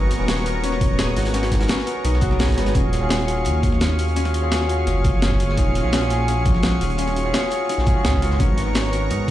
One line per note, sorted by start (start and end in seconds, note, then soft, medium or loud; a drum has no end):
0.00 0.18 G#1 loud
0.00 0.18 B3 medium
0.00 2.71 B3 medium
0.00 0.19 C#4 medium
0.00 0.28 C#4 medium
0.00 2.04 D#4 medium
0.00 0.20 F#4 medium
0.00 0.98 G#4 medium
0.00 0.20 A#4 loud
0.00 2.71 A#5 medium
0.00 2.71 C#6 medium
0.11 snare soft
0.11 closed hi-hat medium
0.18 1.15 D#1 medium
0.18 0.42 B3 medium
0.18 0.44 C#4 medium
0.18 0.44 F#4 medium
0.18 0.44 A#4 loud
0.28 0.63 C#4 medium
0.28 snare loud
0.28 closed hi-hat loud
0.28 closed hi-hat medium
0.37 closed hi-hat soft
0.44 1.31 B3 medium
0.44 1.32 C#4 medium
0.44 1.32 F#4 medium
0.44 closed hi-hat medium
0.48 1.33 A#4 medium
0.64 1.34 C#4 loud
0.64 closed hi-hat medium
0.72 snare soft
0.81 kick loud
0.81 closed hi-hat medium
0.99 2.40 G#4 medium
0.99 snare loud
0.99 closed hi-hat loud
0.99 closed hi-hat medium
1.16 1.68 G#1 medium
1.16 snare loud
1.16 closed hi-hat medium
1.25 snare loud
1.25 closed hi-hat medium
1.33 1.58 B3 medium
1.33 1.58 C#4 medium
1.33 1.69 C#4 medium
1.33 1.58 F#4 medium
1.33 1.59 A#4 medium
1.33 snare loud
1.33 closed hi-hat medium
1.33 closed hi-hat loud
1.42 snare medium
1.42 closed hi-hat medium
1.51 kick medium
1.51 snare loud
1.51 closed hi-hat medium
1.59 1.84 B3 medium
1.59 1.85 C#4 medium
1.59 1.85 F#4 medium
1.59 1.85 A#4 loud
1.59 snare loud
1.59 closed hi-hat medium
1.68 2.57 C#4 medium
1.68 snare loud
1.68 closed hi-hat loud
1.78 snare medium
1.78 snare soft
1.86 2.20 B3 medium
1.86 2.20 C#4 medium
1.86 2.21 F#4 medium
1.86 2.21 A#4 medium
1.86 closed hi-hat medium
2.05 2.59 B1 medium
2.05 3.45 D#4 medium
2.05 closed hi-hat medium
2.13 snare soft
2.21 2.28 B3 medium
2.21 2.29 C#4 medium
2.21 4.51 F#4 loud
2.21 2.29 F#4 medium
2.21 2.29 G#4 loud
2.21 kick loud
2.21 closed hi-hat medium
2.30 2.55 B3 loud
2.30 2.55 C#4 medium
2.30 2.56 F#4 medium
2.30 2.56 A#4 loud
2.30 snare soft
2.39 4.67 G#4 medium
2.39 snare loud
2.39 snare medium
2.39 closed hi-hat medium
2.39 closed hi-hat loud
2.45 snare medium
2.45 closed hi-hat medium
2.48 kick medium
2.48 snare medium
2.48 snare soft
2.48 closed hi-hat medium
2.52 snare medium
2.52 closed hi-hat medium
2.56 2.73 G#1 loud
2.56 2.72 B3 loud
2.56 2.73 C#4 medium
2.56 2.75 C#4 medium
2.56 2.73 F#4 medium
2.56 2.74 B4 loud
2.56 snare loud
2.56 snare soft
2.56 closed hi-hat medium
2.66 snare loud
2.66 closed hi-hat medium
2.74 3.47 D#1 loud
2.74 2.99 C#4 medium
2.74 3.10 C#4 medium
2.74 2.99 F4 medium
2.74 3.00 F#4 medium
2.74 8.36 G#4 medium
2.74 3.00 G#4 medium
2.74 8.36 F5 medium
2.74 9.31 C#6 medium
2.74 kick loud
2.74 closed hi-hat medium
2.93 snare soft
2.93 closed hi-hat medium
3.01 3.25 C#4 medium
3.01 3.26 F4 medium
3.01 3.26 F#4 medium
3.01 3.27 G#4 loud
3.09 3.81 C#4 medium
3.09 snare loud
3.09 closed hi-hat loud
3.19 closed hi-hat soft
3.26 4.13 C#4 medium
3.26 4.14 F4 medium
3.26 4.15 F#4 medium
3.26 closed hi-hat medium
3.30 4.15 G#4 medium
3.45 4.86 D#2 loud
3.45 5.57 D#4 medium
3.45 closed hi-hat medium
3.63 kick loud
3.63 closed hi-hat medium
3.72 snare soft
3.81 4.16 C#4 medium
3.81 snare loud
3.81 closed hi-hat medium
3.81 closed hi-hat loud
3.90 snare soft
3.99 closed hi-hat medium
4.08 closed hi-hat soft
4.15 4.40 C#4 medium
4.15 4.87 C#4 loud
4.15 4.41 F4 medium
4.15 4.41 F#4 medium
4.15 4.41 G#4 medium
4.15 closed hi-hat medium
4.15 closed hi-hat loud
4.25 snare medium
4.25 closed hi-hat soft
4.34 closed hi-hat medium
4.42 4.66 C#4 medium
4.42 4.67 F4 medium
4.42 4.67 F#4 medium
4.42 4.68 G#4 loud
4.52 6.63 F#4 medium
4.52 snare loud
4.52 closed hi-hat loud
4.52 closed hi-hat medium
4.61 snare soft
4.67 5.54 C#4 medium
4.67 5.56 F#4 medium
4.67 5.55 F5 medium
4.67 closed hi-hat medium
4.71 5.56 G#4 medium
4.87 5.56 F#1 medium
4.87 5.22 C#4 medium
4.87 snare soft
4.87 closed hi-hat medium
5.04 kick loud
5.04 closed hi-hat medium
5.22 5.93 C#4 medium
5.22 snare loud
5.22 closed hi-hat medium
5.31 kick medium
5.40 snare soft
5.40 closed hi-hat medium
5.49 snare medium
5.56 5.83 D#1 loud
5.56 5.81 C#4 medium
5.56 7.69 D#4 medium
5.56 5.82 F4 medium
5.56 5.82 F#4 medium
5.56 5.82 G#4 medium
5.56 kick loud
5.56 closed hi-hat medium
5.75 snare soft
5.75 closed hi-hat medium
5.83 6.80 A#1 medium
5.83 6.07 C#4 medium
5.83 6.08 F4 medium
5.83 6.08 F#4 medium
5.83 6.09 G#4 loud
5.93 6.28 C#4 medium
5.93 snare loud
5.93 closed hi-hat medium
5.93 closed hi-hat loud
6.01 closed hi-hat soft
6.08 6.95 C#4 medium
6.08 6.97 F#4 medium
6.08 6.96 F5 medium
6.08 closed hi-hat medium
6.13 6.98 G#4 medium
6.28 6.98 C#4 loud
6.28 closed hi-hat medium
6.45 kick loud
6.45 closed hi-hat medium
6.55 snare soft
6.63 9.07 F#4 medium
6.63 snare loud
6.63 closed hi-hat medium
6.72 snare soft
6.81 7.33 D#1 medium
6.81 closed hi-hat medium
6.90 closed hi-hat soft
6.97 7.22 C#4 medium
6.97 7.34 C#4 medium
6.97 7.23 F4 medium
6.97 7.23 F#4 medium
6.97 7.24 G#4 medium
6.97 closed hi-hat medium
7.07 snare soft
7.07 closed hi-hat soft
7.16 closed hi-hat medium
7.24 7.49 C#4 medium
7.24 7.49 F4 medium
7.24 7.50 F#4 medium
7.24 7.50 G#4 loud
7.34 8.04 C#4 medium
7.34 snare loud
7.34 closed hi-hat medium
7.34 closed hi-hat loud
7.43 snare medium
7.50 7.85 C#4 medium
7.50 7.85 F4 medium
7.50 7.85 F#4 medium
7.50 7.86 G#4 medium
7.50 closed hi-hat medium
7.69 9.10 D#4 medium
7.69 snare soft
7.69 closed hi-hat medium
7.78 7.94 A#1 medium
7.78 snare medium
7.86 7.93 C#4 medium
7.86 7.93 F4 medium
7.86 7.94 F#4 medium
7.86 7.94 G#4 loud
7.86 kick loud
7.86 closed hi-hat medium
7.94 8.19 C#4 loud
7.94 8.20 F4 medium
7.94 8.20 F#4 medium
7.94 8.21 G#4 loud
8.04 8.38 C#2 loud
8.04 8.39 C#4 medium
8.04 snare loud
8.04 closed hi-hat medium
8.13 kick medium
8.21 8.37 C#4 medium
8.21 8.38 F4 medium
8.21 8.38 F#4 medium
8.21 8.38 A#4 loud
8.21 snare soft
8.21 closed hi-hat medium
8.30 snare medium
8.39 9.12 G#1 loud
8.39 8.64 B3 medium
8.39 9.31 B3 medium
8.39 8.64 C#4 medium
8.39 8.75 C#4 medium
8.39 8.64 F#4 medium
8.39 8.65 A#4 medium
8.39 9.31 A#5 medium
8.39 kick loud
8.39 closed hi-hat medium
8.58 snare soft
8.58 closed hi-hat medium
8.65 8.89 B3 medium
8.65 8.91 C#4 medium
8.65 8.91 F#4 medium
8.65 8.91 A#4 loud
8.75 9.31 C#4 medium
8.75 snare loud
8.75 closed hi-hat medium
8.75 closed hi-hat loud
8.84 closed hi-hat soft
8.91 9.31 B3 medium
8.91 9.31 C#4 medium
8.91 9.31 F#4 medium
8.91 closed hi-hat medium
8.95 9.31 A#4 medium
9.10 9.31 G#2 loud
9.10 9.31 D#4 medium
9.10 closed hi-hat medium